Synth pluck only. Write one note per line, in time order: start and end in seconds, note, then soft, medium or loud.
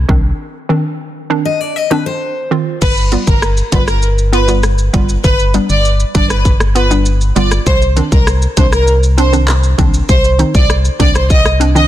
0.08 0.21 D#3 medium
0.08 0.21 C4 medium
0.08 0.21 D4 loud
0.69 0.82 D#3 medium
0.69 0.82 C4 medium
0.69 0.82 D4 loud
1.30 1.42 D#3 medium
1.30 1.42 C4 medium
1.30 1.43 D4 loud
1.91 2.03 D#3 medium
1.91 2.03 C4 medium
1.91 2.03 D4 loud
2.51 2.63 D#3 medium
2.51 2.64 C4 medium
2.51 2.64 F4 loud
3.12 3.24 G3 medium
3.12 3.24 B3 medium
3.12 3.24 F4 medium
3.72 3.85 G3 medium
3.72 3.85 B3 medium
3.72 3.85 F4 medium
4.33 4.39 B3 medium
4.33 4.39 F4 medium
4.48 4.60 G3 medium
4.48 4.60 B3 medium
4.48 4.61 F4 medium
4.93 5.06 G3 medium
4.93 5.06 B3 medium
4.93 5.06 F4 loud
5.54 5.67 G3 medium
5.54 5.67 B3 medium
5.54 5.67 D4 medium
6.15 6.27 G3 medium
6.15 6.27 B3 medium
6.15 6.27 D4 medium
6.75 6.82 B3 medium
6.75 6.82 F4 medium
6.90 7.03 G3 medium
6.90 7.03 B3 medium
6.90 7.03 D4 medium
7.36 7.48 G3 medium
7.36 7.48 B3 medium
7.36 7.49 F4 medium
7.96 8.09 D#3 medium
7.96 8.09 C4 medium
7.96 8.09 D4 medium
8.57 8.69 D#3 medium
8.57 8.69 C4 medium
8.57 8.70 D4 medium
9.18 9.24 C4 medium
9.18 9.24 D4 medium
9.33 9.45 D#3 medium
9.33 9.45 C4 medium
9.33 9.45 D4 medium
9.78 9.91 D#3 medium
9.78 9.91 C4 medium
9.78 9.91 D4 loud
10.39 10.51 D#3 medium
10.39 10.51 C4 medium
10.39 10.52 D#4 medium
10.99 11.12 D#3 medium
10.99 11.12 C4 medium
10.99 11.12 D4 medium
11.60 11.66 C4 medium
11.60 11.67 D4 medium
11.75 11.87 D#3 medium
11.75 11.88 C4 medium
11.75 11.88 D4 medium